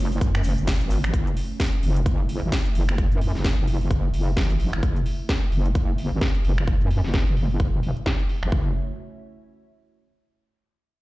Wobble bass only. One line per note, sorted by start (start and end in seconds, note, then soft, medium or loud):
0.00 0.20 F#1 loud
0.21 0.43 F#2 loud
0.44 0.56 F#1 loud
0.58 0.79 F#1 loud
0.81 1.12 G#1 loud
1.14 1.35 F#1 medium
1.83 2.05 F#1 loud
2.06 2.40 F#1 medium
2.43 2.51 G#1 loud
2.75 3.10 F#1 loud
3.12 3.33 F#2 medium
3.35 3.56 F#1 medium
3.58 3.89 F#1 medium
3.91 4.12 F#1 medium
4.14 4.35 F#1 loud
4.37 4.71 A1 medium
4.73 4.81 F#1 loud
4.83 5.04 F#1 loud
5.52 5.74 F#1 loud
5.75 6.10 F#1 medium
6.12 6.20 G#1 loud
6.45 6.79 F#1 loud
6.81 7.02 F#2 loud
7.04 7.25 F#1 loud
7.27 7.58 F#1 loud
7.60 7.94 F#1 loud
8.43 8.51 F#1 loud
8.52 8.74 F#1 medium